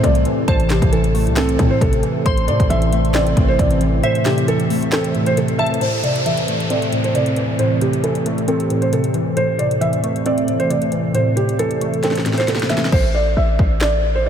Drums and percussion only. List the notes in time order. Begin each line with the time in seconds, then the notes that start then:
0.04 kick, closed hi-hat
0.15 closed hi-hat
0.25 closed hi-hat
0.48 kick, closed hi-hat
0.60 closed hi-hat
0.70 snare, clap, closed hi-hat
0.82 kick, closed hi-hat
0.93 closed hi-hat
1.04 closed hi-hat
1.15 open hi-hat
1.27 closed hi-hat
1.37 snare, clap, closed hi-hat
1.49 closed hi-hat
1.59 kick, closed hi-hat
1.81 kick, closed hi-hat
1.93 closed hi-hat
2.03 closed hi-hat
2.26 kick, closed hi-hat
2.37 closed hi-hat
2.48 closed hi-hat
2.60 kick, closed hi-hat
2.70 closed hi-hat
2.82 closed hi-hat
2.93 closed hi-hat
3.05 closed hi-hat
3.14 snare, clap, closed hi-hat
3.27 closed hi-hat
3.37 kick, closed hi-hat
3.59 kick, closed hi-hat
3.71 closed hi-hat
3.81 closed hi-hat
4.04 closed hi-hat
4.15 closed hi-hat
4.26 snare, clap, closed hi-hat
4.38 closed hi-hat
4.48 closed hi-hat
4.60 closed hi-hat
4.70 open hi-hat
4.83 closed hi-hat
4.92 snare, clap, closed hi-hat
5.04 closed hi-hat
5.15 closed hi-hat
5.26 closed hi-hat
5.37 closed hi-hat
5.48 closed hi-hat
5.59 closed hi-hat
5.67 closed hi-hat
5.74 closed hi-hat
5.81 closed hi-hat
6.04 closed hi-hat
6.16 closed hi-hat
6.26 closed hi-hat
6.37 closed hi-hat
6.48 closed hi-hat
6.60 closed hi-hat
6.70 closed hi-hat
6.82 closed hi-hat
6.93 closed hi-hat
7.04 closed hi-hat
7.15 closed hi-hat
7.26 closed hi-hat
7.36 closed hi-hat
7.59 closed hi-hat
7.81 closed hi-hat
7.93 closed hi-hat
8.04 closed hi-hat
8.15 closed hi-hat
8.26 closed hi-hat
8.38 closed hi-hat
8.48 closed hi-hat
8.60 closed hi-hat
8.70 closed hi-hat
8.82 closed hi-hat
8.93 closed hi-hat
9.04 closed hi-hat
9.14 closed hi-hat
9.37 closed hi-hat
9.59 closed hi-hat
9.71 closed hi-hat
9.82 closed hi-hat
9.93 closed hi-hat
10.04 closed hi-hat
10.16 closed hi-hat
10.26 closed hi-hat
10.38 closed hi-hat
10.48 closed hi-hat
10.60 closed hi-hat
10.71 closed hi-hat
10.82 closed hi-hat
10.92 closed hi-hat
11.15 closed hi-hat
11.37 closed hi-hat
11.49 closed hi-hat
11.59 closed hi-hat
11.71 closed hi-hat
11.81 closed hi-hat
11.94 closed hi-hat
12.03 snare, closed hi-hat
12.11 snare
12.15 snare, closed hi-hat
12.26 snare, closed hi-hat
12.33 snare
12.38 snare, closed hi-hat
12.48 snare, closed hi-hat
12.55 snare
12.60 snare, closed hi-hat
12.70 snare, closed hi-hat
12.78 snare
12.85 snare
12.92 kick, crash
13.59 kick
13.81 snare, clap